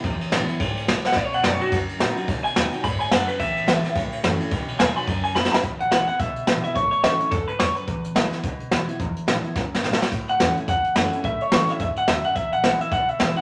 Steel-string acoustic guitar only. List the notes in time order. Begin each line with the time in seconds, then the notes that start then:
0.05 E2
0.31 E3 G#3 B3 E4
0.49 B3 E4
0.61 G#2
0.88 A2
1.17 B2
1.43 F#3 B3 D#4 F#4
1.60 D#4 F#4
1.72 F#2
1.99 F#3 B3 D#4 F#4
2.16 D#4 F#4
2.28 B2
2.56 F#3 B3 D#4 F#4
2.72 D#4 F#4
2.84 G#2
3.12 F#2
3.40 E2
3.67 E3 G#3 B3 E4
3.83 B3 E4
3.96 A2
4.23 E3 A3 C#4 E4
4.40 C#4 E4
4.51 B2
4.79 F#3 B3 D#4 F#4
4.96 D#4 F#4
5.07 F#2
5.34 F#3 B3 D#4 F#4
5.52 D#4 F#4
5.64 E2
5.91 E3 G#3 B3 E4
6.07 B3 E4
6.20 B2
6.47 E3 G#3 B3 E4
6.64 B3 E4
6.76 A2
7.03 E3 A3 C#4 E4
7.20 C#4 E4
7.32 G#2
7.59 F#2
7.87 E2
8.15 E3 G#3 B3 E4
8.32 B3 E4
8.44 B2
8.71 E3 G#3 B3 E4
8.88 B3 E4
9.00 E2
9.27 E3 G#3 B3 E4
9.44 B3 E4
9.56 F#2
9.84 G#2
10.12 A2
10.40 E3 A3 C#4 E4
10.57 C#4 E4
10.68 E2
10.96 E3 A3 C#4 E4
11.12 C#4 E4
11.24 A2
11.52 E3 A3 C#4 E4
11.68 C#4 E4
11.80 G#2
12.08 F#2
12.36 E2
12.63 E3 G#3 B3 E4
12.80 B3 E4
12.92 B2
13.19 E3 G#3 B3 E4
13.36 E4